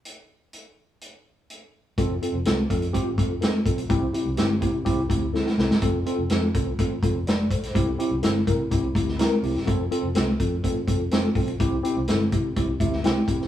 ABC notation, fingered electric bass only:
X:1
M:4/4
L:1/16
Q:1/4=125
K:F
V:1 name="Fingered electric bass" clef=bass
z16 | F,,,2 z F,,, C,,2 F,,2 A,,,2 F,,,4 =B,,,2 | C,,2 z C,, G,,,2 C,2 C,,2 D,,3 z C,, E,,, | F,,,2 z F,,, F,,2 C,,2 A,,,2 F,,,4 =B,,,2 |
C,,2 z C,, G,,,2 C,2 C,,2 D,,3 z C,, E,,, | F,,,2 z F,,, C,,2 F,,2 A,,,2 F,,,4 =B,,,2 | C,,2 z C,, G,,,2 C,2 C,,2 D,,2 C,, z E,,,2 |]